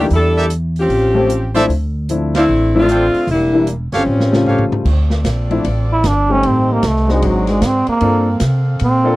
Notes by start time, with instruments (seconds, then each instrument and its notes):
0.00 grand piano D4 G4
0.10 upright bass E2, saxophone section G3 D4 E4 A4, open hi-hat
0.36 trumpet section G4 A#4 D5 E5
0.50 closed hi-hat
0.76 saxophone section F3 C4 C#4 G4, open hi-hat
0.89 upright bass A1, open hi-hat
1.14 grand piano F3 A3 C4 C#4 G4
1.30 closed hi-hat
1.54 grand piano F3 A3 C4 D4 E4, trumpet section A4 C5 D5 E5, open hi-hat
1.69 upright bass D2, open hi-hat
2.09 grand piano F3 A3 C4 D4 E4, closed hi-hat
2.35 saxophone section A3 C4 D4 E4, trumpet section A4 C5 D5 F5, snare, ride
2.49 upright bass A1
2.75 grand piano F3 A3 C4 D4 E4, saxophone section A3 C4 D4 F4
2.89 trumpet section A4 C5 D5 G5, closed hi-hat
3.14 muted upright bass stroke, open hi-hat
3.27 upright bass E1, open hi-hat
3.31 saxophone section G3 A#3 D4 E4
3.53 grand piano E3 G3 A#3 D4 E4
3.67 closed hi-hat
3.92 upright bass G1, saxophone section F3, trumpet section G4 A4 C#5 F5, snare, open hi-hat
3.96 saxophone section G3 C4 C#4
4.06 upright bass A1
4.20 snare
4.32 grand piano C#3 G3 A3 F4 C5, snare
4.46 trumpet section G4 A4 C#5 F5, floor tom
4.58 floor tom
4.71 muted upright bass stroke, floor tom
4.85 upright bass D2, saxophone section C4 F4 A4 D5, kick, crash
5.10 snare
5.24 upright bass A#1, snare, hi-hat pedal, ride
5.50 grand piano F3 A3 C4 D4 E4, ride
5.64 upright bass A1, ride
5.92 trombone E4
6.04 upright bass G1, trombone D4, snare, hi-hat pedal, ride
6.29 grand piano G3 A3 C4 D#4 G4, trombone C#4
6.43 upright bass A1, saxophone section C4 G4 D#5, ride
6.47 trombone C4
6.73 trombone A#3
6.83 upright bass C2, snare, hi-hat pedal, ride
6.88 trombone A3
6.96 snare
7.08 grand piano G#3 C4 D4 D#4 F#4, snare
7.12 trombone G#3
7.22 upright bass G#1, saxophone section F#4 G#4 D5, ride
7.27 trombone F#3
7.47 trombone G#3, snare, ride
7.62 upright bass G#2, snare, hi-hat pedal, ride
7.66 trombone C4
7.87 trombone A#3, muted upright bass stroke, ride
8.01 upright bass G2, grand piano A#3 C4 D4 F4 A4, saxophone section A#3 A4 F5, ride
8.40 upright bass C3, snare, hi-hat pedal, ride
8.79 upright bass A#2, ride
8.84 trombone C4
9.04 grand piano A#3 C4 D4 F4 A4